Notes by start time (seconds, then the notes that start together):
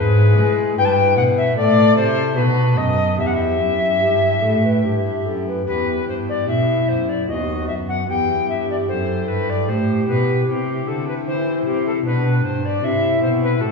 Already playing: E4 G#4 B4
0.00 G#2
0.38 G#3
0.74 G2 E4 B4
0.78 G2 B4 G5
0.85 A5
0.92 G5
1.17 B2 F#5
1.37 E5
1.52 E4 A4
1.56 A2 A4 D5
1.97 C3 C5
2.32 B3 D#4 A4
2.36 B2 F#4 B4
2.77 F#2 D#5
3.13 B3 E4 G4
3.18 E2 E5
3.27 F#5
3.34 E5
3.58 F#2
4.00 G2 G4
4.41 A2 A4
4.64 B4
4.83 G2 G4
5.26 F#2 A4
5.48 B4
5.62 B3 E4 G4
5.67 E2 G4 B4
6.07 G2 C5
6.29 D5
6.47 B2 E4 E5
6.88 F#2 C5
7.09 D5
7.24 D#2 B3 F#4
7.28 D#2 F#4 D#5
7.68 F#2 E5
7.89 F#5
8.04 B3 E4 G4
8.08 E2 G4 G5
8.48 G2 E5
8.70 D5
8.88 F#2 A4 C5
9.28 G2 B4
9.50 D5
9.68 A2 G4 C5
10.08 B2 B4
10.43 C4 E4 G4
10.47 C3 G4
10.87 D3 A4
11.08 B4
11.26 E3 E4 C5
11.65 C3 G4
11.86 A4
12.00 D4 G4
12.05 B2 D4 B4
12.44 G2 C5
12.65 D5
12.78 C4 E4 G4
12.83 C3 E4 E5
13.22 B2 C5
13.43 B4
13.61 A2 F#4 A4